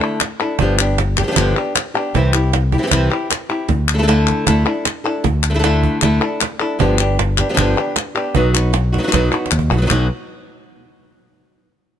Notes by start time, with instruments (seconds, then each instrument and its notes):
Already playing: nylon-string guitar D3 A3 D4 E4 A4
0.02 clap
0.20 muted nylon-string guitar stroke, cajon slap, clap
0.40 nylon-string guitar D4 E4 A4, clap
0.59 fingered electric bass G1, nylon-string guitar D3 F3 B3 D4 G4, cajon bass
0.79 nylon-string guitar B3 D4 G4, clap
0.98 muted nylon-string guitar stroke, cajon slap
1.17 nylon-string guitar B3 D4 G4, cajon bass, clap
1.23 nylon-string guitar F3 D4 G4
1.27 nylon-string guitar F3 B3 D4 G4
1.32 nylon-string guitar F3 B3 D4 G4
1.36 fingered electric bass G1, nylon-string guitar D3 F3 B3 D4 G4, cajon bass, clap
1.56 nylon-string guitar B3 D4 G4, clap
1.75 muted nylon-string guitar stroke, cajon slap, clap
1.94 nylon-string guitar B3 D4 G4, cajon slap, clap
2.14 fingered electric bass C2, nylon-string guitar C3 E3 C4 E4 G4, cajon bass
2.33 nylon-string guitar C4 E4 G4, clap
2.53 muted nylon-string guitar stroke, cajon slap
2.72 nylon-string guitar C4 E4 G4, cajon bass
2.78 nylon-string guitar E3 C4 E4 G4
2.82 nylon-string guitar E3 C4 E4 G4
2.87 nylon-string guitar E3 C4 E4 G4
2.91 fingered electric bass C2, nylon-string guitar C3 E3 C4 E4 G4, cajon bass, clap
3.10 nylon-string guitar C4 E4 G4, clap
3.30 muted nylon-string guitar stroke, cajon slap, clap
3.49 nylon-string guitar C4 E4 G4, cajon slap, clap
3.69 fingered electric bass D2, muted nylon-string guitar stroke, cajon bass
3.88 clap
3.93 nylon-string guitar A3 D4 E4 A4
3.98 nylon-string guitar A3 D4 E4 A4
4.02 nylon-string guitar A3 D4 E4 A4
4.07 nylon-string guitar D3 A3 D4 E4 A4, cajon slap
4.27 cajon bass, cajon slap, clap
4.46 fingered electric bass D2, nylon-string guitar D3 A3 D4 E4 A4, cajon bass, clap
4.65 nylon-string guitar D4 E4 A4, clap
4.85 muted nylon-string guitar stroke, cajon slap, clap
5.04 nylon-string guitar D4 E4 A4, clap
5.24 fingered electric bass D2, muted nylon-string guitar stroke, cajon bass
5.43 clap
5.50 nylon-string guitar A3 D4 E4 A4
5.54 nylon-string guitar A3 D4 E4 A4
5.59 nylon-string guitar A3 D4 E4 A4
5.63 nylon-string guitar D3 A3 D4 E4 A4, cajon slap
5.83 cajon bass
6.02 fingered electric bass D2, nylon-string guitar D3 A3 D4 E4 A4, cajon bass, clap
6.21 nylon-string guitar D4 E4 A4, clap
6.41 muted nylon-string guitar stroke, cajon slap, clap
6.60 nylon-string guitar D4 E4 A4, cajon slap, clap
6.79 fingered electric bass G1, nylon-string guitar D3 F3 B3 D4 G4, cajon bass
6.99 nylon-string guitar B3 D4 G4, clap
7.19 muted nylon-string guitar stroke, cajon slap
7.38 nylon-string guitar B3 D4 G4, cajon bass, cajon slap, clap
7.49 nylon-string guitar F3 B3 D4 G4
7.54 nylon-string guitar F3 B3 D4 G4, cajon bass, clap
7.58 fingered electric bass G1, nylon-string guitar D3 F3 B3 D4 G4
7.77 nylon-string guitar B3 D4 G4, clap
7.96 muted nylon-string guitar stroke, cajon slap, clap
8.15 nylon-string guitar B3 D4 G4, clap
8.35 fingered electric bass B1, nylon-string guitar B2 F#3 B3 D#4 F#4, cajon bass
8.54 nylon-string guitar B3 D#4 F#4, clap
8.73 muted nylon-string guitar stroke, cajon slap
8.92 nylon-string guitar B3 D#4 F#4, cajon bass, cajon slap
8.98 nylon-string guitar F#3 B3 D#4 F#4
9.03 nylon-string guitar F#3 B3 D#4 F#4
9.07 nylon-string guitar F#3 B3 D#4 F#4
9.12 fingered electric bass B1, nylon-string guitar B2 F#3 B3 D#4 F#4, cajon bass, clap
9.31 nylon-string guitar B3 D#4 F#4, cajon slap, clap
9.46 cajon slap
9.51 fingered electric bass D#2, muted nylon-string guitar stroke, clap
9.59 cajon bass
9.70 fingered electric bass B1, nylon-string guitar B3 D#4 F#4, cajon bass, clap
9.77 nylon-string guitar F#3 B3 D#4 F#4
9.82 nylon-string guitar F#3 B3 D#4 F#4
9.87 fingered electric bass B1, nylon-string guitar B2 F#3 B3 D#4 F#4, cajon bass, clap
9.92 nylon-string guitar B3 D#4 F#4